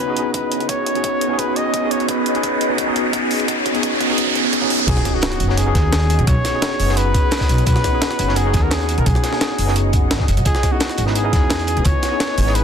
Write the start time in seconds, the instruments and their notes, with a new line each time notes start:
Already playing: ambient pad B3 F#4 G#4 C#5 D#5, muted trumpet B4, riser
0.07 tine electric piano B3 C#4 D#4 F#4 G#4
0.14 tine electric piano B3 C#4 D#4, closed hi-hat
0.18 tine electric piano F#4 G#4
0.34 muted trumpet B4, kick, closed hi-hat
0.52 closed hi-hat
0.60 closed hi-hat
0.69 muted trumpet C#5, kick, closed hi-hat
0.86 closed hi-hat
0.94 tine electric piano B3 C#4 D#4 F#4 G#4, closed hi-hat
1.04 kick, closed hi-hat
1.21 closed hi-hat
1.28 tine electric piano B3 C#4 D#4
1.32 tine electric piano F#4 G#4
1.39 muted trumpet B4, kick, closed hi-hat
1.56 muted trumpet D#5, closed hi-hat
1.74 kick, closed hi-hat
1.80 tine electric piano B3 C#4 D#4
1.84 tine electric piano F#4 G#4
1.91 muted trumpet C#5, closed hi-hat
2.00 closed hi-hat
2.09 muted trumpet B4, kick, closed hi-hat
2.26 closed hi-hat
2.33 tine electric piano B3 C#4 D#4 F#4 G#4, closed hi-hat
2.43 kick, closed hi-hat
2.61 closed hi-hat
2.68 tine electric piano B3 C#4 D#4 F#4 C#5
2.78 kick, closed hi-hat
2.86 tine electric piano B3 C#4 D#4 F#4 G#4
2.93 tine electric piano B3 C#4 D#4, closed hi-hat
2.97 tine electric piano F#4 G#4
3.13 kick, closed hi-hat
3.31 open hi-hat
3.40 closed hi-hat
3.48 kick, closed hi-hat, noise sweep
3.66 kick, closed hi-hat
3.73 tine electric piano B3 C#4 D#4 F#4 G#4, closed hi-hat
3.83 kick, closed hi-hat
4.01 kick, closed hi-hat
4.07 tine electric piano B3 C#4 D#4
4.11 tine electric piano F#4 G#4
4.18 kick, closed hi-hat
4.27 kick
4.35 kick, closed hi-hat
4.44 kick
4.53 kick, closed hi-hat
4.61 tine electric piano B3 C#4 D#4 F#4 G#4, kick
4.70 kick, open hi-hat
4.79 kick, closed hi-hat
4.87 upright bass B1, tine electric piano B3 C#4 D#4 F#4 G#4, ambient pad G#4 C#5 D#5 F#5, muted trumpet G#4, kick, closed hi-hat, crash, impact
4.97 snare
5.05 kick, snare, closed hi-hat
5.13 tine electric piano B3 C#4 D#4 F#4 G#4, muted trumpet F#4
5.22 snare, closed hi-hat
5.32 snare, closed hi-hat
5.40 upright bass F#1, closed hi-hat
5.48 tine electric piano B3 C#4 D#4 F#4 C#5, muted trumpet F#4, snare
5.58 muted trumpet G#4, closed hi-hat
5.65 tine electric piano B3 C#4 D#4 F#4 G#4
5.72 upright bass D#2, tine electric piano B3 C#4, kick, snare, closed hi-hat
5.78 tine electric piano G#4
5.92 snare, closed hi-hat
6.01 closed hi-hat
6.10 closed hi-hat
6.19 upright bass B1, closed hi-hat
6.27 upright bass B1, muted trumpet C#5, kick, closed hi-hat
6.44 snare, closed hi-hat
6.52 tine electric piano B3 C#4 D#4 F#4 G#4
6.62 snare, closed hi-hat
6.79 upright bass F#1, closed hi-hat, open hi-hat
6.86 tine electric piano B3 C#4 D#4, snare
6.90 tine electric piano F#4 G#4
6.97 muted trumpet B4, closed hi-hat
7.14 kick, closed hi-hat
7.31 snare, closed hi-hat
7.36 tine electric piano B3 C#4, snare, closed hi-hat
7.41 tine electric piano D#4 F#4 G#4, kick, snare, closed hi-hat
7.49 upright bass B1, closed hi-hat
7.58 closed hi-hat
7.66 upright bass B1, muted trumpet B4, kick, closed hi-hat
7.76 snare
7.84 kick, snare, closed hi-hat
7.92 tine electric piano B3 C#4 D#4 F#4 G#4
8.02 snare, closed hi-hat
8.11 snare, closed hi-hat
8.19 upright bass F#1, closed hi-hat
8.27 tine electric piano B3 C#4 D#4 F#4 C#5, snare
8.36 muted trumpet G#4, closed hi-hat
8.44 tine electric piano B3 C#4 D#4 F#4 G#4
8.51 upright bass D#2, tine electric piano B3 C#4 D#4, kick, snare, closed hi-hat
8.55 tine electric piano F#4 G#4
8.63 muted trumpet A#4
8.71 muted trumpet G#4, snare, closed hi-hat
8.80 closed hi-hat
8.89 closed hi-hat
8.98 upright bass B1, muted trumpet A#4, closed hi-hat
9.06 upright bass B1, muted trumpet G#4, kick, closed hi-hat
9.15 snare
9.23 snare, closed hi-hat
9.31 tine electric piano B3 C#4 D#4 F#4 G#4, snare
9.41 snare, closed hi-hat
9.59 upright bass F#1, closed hi-hat, open hi-hat
9.65 tine electric piano B3 C#4 D#4, snare
9.69 tine electric piano F#4 G#4
9.76 closed hi-hat
9.93 kick, closed hi-hat
10.11 upright bass G#1, snare, closed hi-hat
10.18 tine electric piano B3 C#4 D#4 F#4 G#4, kick, snare
10.28 upright bass F#1, closed hi-hat
10.37 upright bass B1, closed hi-hat
10.45 upright bass C#2, muted trumpet G#4, ambient pad B4 G#5, kick, closed hi-hat
10.55 snare
10.63 kick, snare, closed hi-hat
10.71 tine electric piano B3 C#4 D#4 E4 G#4, muted trumpet F#4
10.80 snare, closed hi-hat
10.89 snare, closed hi-hat
10.98 upright bass G#1, closed hi-hat
11.06 tine electric piano B3 C#4 D#4 E4 B4, muted trumpet F#4, snare
11.15 muted trumpet G#4, closed hi-hat
11.23 tine electric piano B3 C#4 D#4 E4 G#4
11.30 upright bass E2, tine electric piano B3 C#4 D#4, kick, snare, closed hi-hat
11.34 tine electric piano E4 F#4
11.50 snare, closed hi-hat
11.59 closed hi-hat
11.67 closed hi-hat
11.77 upright bass C#2, closed hi-hat
11.85 upright bass C#2, muted trumpet C#5, kick, closed hi-hat
12.03 snare, closed hi-hat
12.10 tine electric piano B3 C#4 D#4 E4 G#4
12.20 snare, closed hi-hat
12.38 upright bass G#1, closed hi-hat, open hi-hat
12.44 tine electric piano B3 C#4 D#4, snare
12.48 tine electric piano E4 G#4
12.55 muted trumpet B4, closed hi-hat